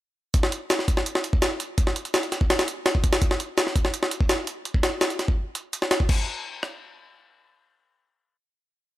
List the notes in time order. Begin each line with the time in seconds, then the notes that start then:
0.34 kick, closed hi-hat
0.43 snare
0.52 closed hi-hat
0.70 snare, closed hi-hat
0.79 snare
0.88 kick, closed hi-hat
0.97 snare
1.06 closed hi-hat
1.15 snare
1.24 closed hi-hat
1.33 kick
1.42 snare, closed hi-hat
1.60 closed hi-hat
1.78 kick, closed hi-hat
1.87 snare
1.96 closed hi-hat
2.05 closed hi-hat
2.14 snare, closed hi-hat
2.23 closed hi-hat
2.32 snare, closed hi-hat
2.41 kick
2.50 snare, closed hi-hat
2.59 snare, closed hi-hat
2.68 closed hi-hat
2.86 snare, closed hi-hat
2.95 kick
3.04 kick, closed hi-hat
3.13 snare, closed hi-hat
3.22 kick, closed hi-hat
3.31 snare
3.40 closed hi-hat
3.58 snare, closed hi-hat
3.67 snare
3.76 kick, closed hi-hat
3.85 snare
3.94 closed hi-hat
4.03 snare
4.11 closed hi-hat
4.21 kick
4.29 snare, closed hi-hat
4.47 closed hi-hat
4.65 closed hi-hat
4.74 kick
4.83 snare, closed hi-hat
5.01 snare, closed hi-hat
5.10 closed hi-hat
5.19 snare, closed hi-hat
5.28 kick
5.55 closed hi-hat
5.73 closed hi-hat
5.82 snare
5.91 snare, closed hi-hat
6.00 kick
6.09 kick, crash
6.63 cross-stick